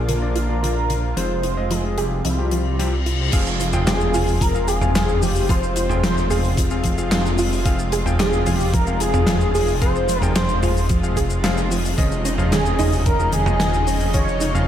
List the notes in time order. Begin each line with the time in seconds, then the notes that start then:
Already playing: A#1 A#2 D3 F3 A#3 D4 F4 D5
0.09 D3 A#4, closed hi-hat
0.22 A#2 A#3 D4 F4 D5
0.36 F4, closed hi-hat
0.49 A#2 A#3 D4 F4 D5
0.63 A#2 D3 A#3 D4 F4 D5, closed hi-hat
0.90 D3, closed hi-hat
1.17 F1 C3 F3 G#3 C4 F4 C5, closed hi-hat
1.43 F4, closed hi-hat
1.57 G#3 C4 F4 D#5
1.71 F3 G#4, closed hi-hat
1.98 C3 F3 G3 C4 G4 G#4, closed hi-hat
2.25 C2 F3 G3 F4, closed hi-hat, reverse cymbal
2.38 C3 F3 G3 C4 G4
2.51 F3, closed hi-hat
2.79 C3 F3 G3 C4 G4, closed hi-hat
3.06 F4, closed hi-hat
3.33 F1 C3 F3 G#3 C4 F4 G#4 F5, kick, closed hi-hat, crash, shaker
3.47 shaker
3.60 F3, closed hi-hat, shaker
3.73 F3 C4 F4 G#4 G5, mid tom, shaker
3.87 F3 G#4, snare, clap, closed hi-hat, shaker
4.00 shaker
4.14 F3 C4 F4 G#4 F5, mid tom, open hi-hat, shaker
4.28 shaker
4.41 F3 A#4, kick, closed hi-hat, shaker
4.55 F3 C4 F4 G#4 F5, shaker
4.68 G#4, closed hi-hat, shaker
4.81 F3 C4 F4 G#4 F5, mid tom, shaker
4.95 F3 C4 F4 G#4 F5, snare, clap, closed hi-hat, shaker
5.09 shaker
5.21 F3 G4, open hi-hat, shaker
5.36 shaker
5.49 F3 C4 F4 G#4 C5 F5, kick, closed hi-hat, shaker
5.63 shaker
5.76 F4, closed hi-hat, shaker
5.89 F3 C4 F4 G#4 G5, mid tom, shaker
6.03 F3 C5, snare, clap, closed hi-hat, shaker
6.17 shaker
6.30 F3 C4 F4 G#4 F5, mid tom, open hi-hat, shaker
6.44 shaker
6.57 F3, kick, closed hi-hat, shaker
6.70 F3 C4 F4 G#4 F5, shaker
6.84 F3, kick, closed hi-hat, shaker
6.98 F3 C4 F4 G#4 F5, shaker
7.12 F3 C4 F4 G#4 F5, snare, clap, closed hi-hat, shaker
7.26 shaker
7.38 F4, open hi-hat, shaker
7.53 shaker
7.66 F3 C4 F4 G#4 F5, kick, closed hi-hat, shaker
7.79 shaker
7.92 G#4, closed hi-hat, shaker
8.06 F3 C4 F4 G#4 G5, mid tom, shaker
8.19 F3 G#4, snare, clap, closed hi-hat, shaker
8.33 shaker
8.46 F3 C4 F4 G#4 F5, mid tom, open hi-hat, shaker
8.57 G4, shaker
8.74 F3 A#4, kick, closed hi-hat, shaker
8.87 F3 C4 F4 G#4 F5, shaker
9.00 F4 G#4, closed hi-hat, shaker
9.14 F3 C4 F4 G#4 F5, mid tom, shaker
9.27 F3 C4 F4 G#4 F5, snare, clap, closed hi-hat, shaker
9.41 shaker
9.55 G#4, open hi-hat, shaker
9.68 shaker
9.82 F3 C4 F4 G#4 C5 F5, kick, closed hi-hat, shaker
9.96 shaker
10.09 F3, closed hi-hat, shaker
10.22 F3 C4 F4 G#4 G5, mid tom, shaker
10.36 F3 C5, snare, clap, closed hi-hat, shaker
10.49 shaker
10.63 F3 C4 F4 G#4 F5, mid tom, open hi-hat, shaker
10.77 shaker
10.89 F3, kick, closed hi-hat, shaker
11.03 F3 C4 F4 G#4 F5, shaker
11.17 G#4, kick, closed hi-hat, shaker
11.30 shaker
11.44 F3 C4 F4 G#4 F5, snare, clap, closed hi-hat, shaker
11.58 shaker
11.71 F3, open hi-hat, shaker
11.85 shaker
11.98 F1 C#3 D#3 F3 C#4 D#4 F4 G#4 D#5, kick, closed hi-hat, shaker
12.12 shaker
12.25 C#4, closed hi-hat, shaker
12.38 F3 C#4 F4 G#4 F5, mid tom, shaker
12.52 D#3 G#4, snare, clap, closed hi-hat, shaker
12.66 shaker
12.79 F3 C#4 D#4 F4 G#4 D#5, mid tom, open hi-hat, shaker
12.93 shaker
13.06 D#3 A#4, kick, closed hi-hat, shaker
13.19 F3 C#4 F4 G#4 D#5, shaker
13.32 D#3 G#4, closed hi-hat, shaker
13.46 F3 C#4 F4 G#4 D#5, mid tom, shaker
13.60 D#3 F3 C#4 F4 G#4 D#5, snare, clap, closed hi-hat, shaker
13.74 shaker
13.87 C#4, open hi-hat, shaker
14.00 shaker
14.14 D#3 F3 C#4 F4 G#4 C#5 D#5, kick, closed hi-hat, shaker
14.28 shaker
14.41 D#4, closed hi-hat, shaker
14.55 F3 C#4 F4 G#4 F5, mid tom, shaker